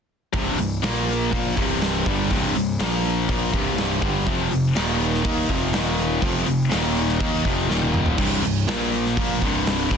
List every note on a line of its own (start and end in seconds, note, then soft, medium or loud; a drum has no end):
0.33 0.57 C1 loud
0.33 0.57 C2 medium
0.33 0.57 G2 loud
0.33 0.58 C3 loud
0.33 kick loud
0.33 open hi-hat medium
0.58 0.82 C1 medium
0.58 0.78 C2 medium
0.58 0.78 G2 medium
0.58 open hi-hat medium
0.82 1.29 A#1 medium
0.82 1.30 A#2 medium
0.82 1.30 F3 medium
0.82 1.31 A#3 medium
0.82 snare loud
0.82 open hi-hat medium
1.08 open hi-hat medium
1.31 1.55 A#1 loud
1.31 1.55 A#2 medium
1.31 1.56 F3 loud
1.31 1.56 A#3 loud
1.31 kick loud
1.31 open hi-hat medium
1.56 2.03 C1 medium
1.56 2.05 C2 medium
1.56 2.05 G2 loud
1.56 2.05 C3 medium
1.56 kick loud
1.56 open hi-hat medium
1.81 snare loud
1.81 open hi-hat medium
2.06 2.29 G1 medium
2.06 2.30 G2 medium
2.06 2.30 D3 medium
2.06 2.31 G3 medium
2.06 kick loud
2.06 open hi-hat medium
2.30 2.54 C1 loud
2.30 2.54 C2 loud
2.30 2.54 G2 loud
2.30 2.55 C3 loud
2.30 kick loud
2.30 open hi-hat medium
2.55 2.78 C1 medium
2.55 2.75 C2 medium
2.55 2.75 G2 medium
2.55 open hi-hat medium
2.79 3.26 A#1 loud
2.79 3.28 A#2 medium
2.79 3.28 F3 loud
2.79 3.29 A#3 loud
2.79 snare loud
2.79 open hi-hat medium
3.04 open hi-hat medium
3.29 3.52 A#1 loud
3.29 3.53 A#2 medium
3.29 3.53 F3 loud
3.29 3.53 A#3 loud
3.29 kick loud
3.29 open hi-hat medium
3.53 3.99 C1 loud
3.53 4.02 C2 loud
3.53 4.01 G2 medium
3.53 4.02 C3 loud
3.53 kick loud
3.53 open hi-hat medium
3.78 snare loud
3.78 open hi-hat medium
4.02 4.25 G1 loud
4.02 4.26 G2 medium
4.02 4.26 D3 medium
4.02 4.27 G3 loud
4.02 kick loud
4.02 open hi-hat medium
4.26 4.50 F1 loud
4.26 4.49 F2 loud
4.26 4.50 C3 loud
4.26 4.51 F3 loud
4.26 kick loud
4.26 open hi-hat medium
4.50 4.75 F1 medium
4.50 4.71 F2 medium
4.50 4.71 C3 medium
4.50 open hi-hat medium
4.75 5.22 D#1 medium
4.75 5.24 D#2 medium
4.75 5.23 A#2 medium
4.75 5.22 D#3 loud
4.75 snare loud
4.75 open hi-hat medium
5.00 open hi-hat medium
5.14 snare soft
5.23 5.48 D#2 medium
5.23 5.48 D#3 loud
5.23 5.48 A#3 loud
5.23 5.49 D#4 loud
5.23 kick loud
5.23 open hi-hat medium
5.49 5.72 F1 medium
5.49 5.73 F2 medium
5.49 5.73 C3 loud
5.49 5.74 F3 loud
5.49 kick medium
5.49 open hi-hat medium
5.73 6.21 D#1 loud
5.73 6.21 D#2 loud
5.73 6.22 A#2 loud
5.73 6.22 D#3 loud
5.73 snare loud
5.73 open hi-hat medium
5.98 open hi-hat medium
6.21 6.46 F1 medium
6.21 6.45 F2 loud
6.21 6.46 C3 loud
6.21 6.47 F3 loud
6.21 kick loud
6.21 open hi-hat medium
6.46 6.71 F1 medium
6.46 6.67 F2 medium
6.46 6.67 C3 medium
6.46 open hi-hat medium
6.71 7.18 D#1 medium
6.71 7.21 D#2 medium
6.71 7.20 A#2 medium
6.71 7.19 D#3 loud
6.71 snare loud
6.71 open hi-hat medium
6.96 open hi-hat medium
7.09 snare soft
7.20 7.44 D#2 loud
7.20 7.45 D#3 loud
7.20 7.45 A#3 loud
7.20 7.45 D#4 loud
7.20 kick loud
7.45 7.68 F1 medium
7.45 7.69 F2 medium
7.45 7.70 C3 medium
7.45 7.70 F3 medium
7.45 kick loud
7.70 8.16 D#1 loud
7.70 8.18 D#2 loud
7.70 8.19 A#2 loud
7.70 8.19 D#3 loud
7.70 snare medium
7.82 high tom medium
7.94 mid tom medium
8.06 floor tom medium
8.18 8.42 C1 medium
8.18 8.42 C2 loud
8.18 8.42 G2 loud
8.18 8.43 C3 loud
8.18 kick loud
8.18 open hi-hat medium
8.18 crash medium
8.43 8.67 C1 medium
8.43 8.63 C2 medium
8.43 8.64 G2 medium
8.43 open hi-hat medium
8.67 9.14 A#1 loud
8.67 9.17 A#2 medium
8.67 9.17 F3 medium
8.67 9.18 A#3 medium
8.67 snare loud
8.67 open hi-hat medium
8.92 open hi-hat medium
9.06 snare soft
9.17 9.40 A#1 medium
9.17 9.42 A#2 medium
9.17 9.42 F3 loud
9.17 9.42 A#3 loud
9.17 kick loud
9.17 open hi-hat medium
9.41 9.88 C1 medium
9.41 9.91 C2 medium
9.41 9.91 G2 loud
9.41 9.92 C3 loud
9.41 kick loud
9.41 open hi-hat medium
9.66 snare loud
9.66 open hi-hat medium
9.91 9.97 G1 medium
9.91 9.97 G2 medium
9.91 9.97 D3 medium
9.91 9.97 G3 loud
9.91 kick loud
9.91 open hi-hat medium